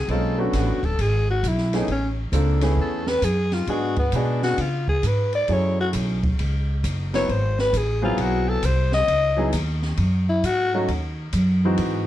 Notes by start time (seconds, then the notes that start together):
Already playing: G#4
0.08 B1 G#3 A#3 C4 C#4 F4 A4, kick, ride
0.38 A3 B3 C#4 D4 F#4
0.53 A1 F#4, kick, snare, hi-hat pedal, ride
0.69 F#1
0.83 D1 A4, kick, ride
0.98 G#1 G#4, kick, ride
1.30 F#4
1.43 B1, kick, hi-hat pedal, ride
1.48 E4
1.58 snare
1.73 A3 B3 C#4 D#4 E4 G#4, snare, ride
1.88 A1, kick, ride
1.92 C#4
2.32 C#2 A#3 C4 D4 F4 A4, kick, hi-hat pedal, ride
2.61 A3 B3 C#4 E4 G#4, snare, ride
2.77 E2, kick
2.81 A4
3.07 B4, snare
3.22 F#2 G#4, kick, hi-hat pedal, ride
3.52 F4, snare, ride
3.67 G#2 G#3 B3 D4 F#4 G#4, kick, ride
3.96 B3, kick, ride
4.12 B2 G#3 B3 D4 F#4 G#4, kick, hi-hat pedal, ride
4.16 D4
4.42 F#4, snare
4.58 C#3 F4, kick, ride
4.88 G#4, kick
5.03 G#2 B4, kick, hi-hat pedal, ride
5.33 D5, ride
5.48 F#2 F#3 A3 C#4 E4 G#4, kick, ride
5.53 C#5
5.81 F#4
5.93 B1, kick, hi-hat pedal, ride
6.23 kick, ride
6.39 C#2, kick, ride
6.83 F#1, kick, hi-hat pedal, ride
7.14 F#3 B3 C4 E4 B4 C#5, snare, ride
7.28 G#1 C5, kick, ride
7.59 B4, snare
7.73 A1, kick, hi-hat pedal, ride
7.77 G#4
8.02 F#3 B3 C4 E4 F4 G#4
8.17 B1 F#4, kick, ride
8.49 A4
8.63 C2 C5, kick, hi-hat pedal, ride
8.92 D#5, snare
9.08 C#2, kick, ride
9.37 F#3 B3 D#4 E4 G#4
9.53 D#2, kick, hi-hat pedal, ride
9.82 snare
9.97 F#2, kick, ride
10.29 E4
10.43 G#2 F#4, kick, hi-hat pedal, ride
10.74 F#3 A3 C#4 D#4 F#4
10.88 D#2, kick, ride
11.33 F#2, kick, hi-hat pedal, ride
11.65 E3 G#3 C4 D#4 F#4
11.78 G#2, kick, ride